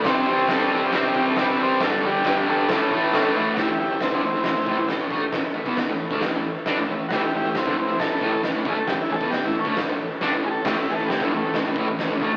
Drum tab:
CC |----------------|----------------|----------------|----------------|
HH |o---o---o---o---|o---o---o---o---|o---o---o---o---|o---o---o---o---|
SD |o---o---o---o---|o---o---o---o---|o---o---o---o---|o---o---o---o---|
BD |o-------o-o-----|o-------o-o-----|o----o----o---o-|o--o---o--------|

CC |----------------|----------------|x---------------|
HH |o---o---o---o---|o---o---o---o---|----o---o---o---|
SD |o---o---o---o---|o---o---o---o---|o---o---o---o---|
BD |o----o----o---o-|o--o---o--------|o----o----o---o-|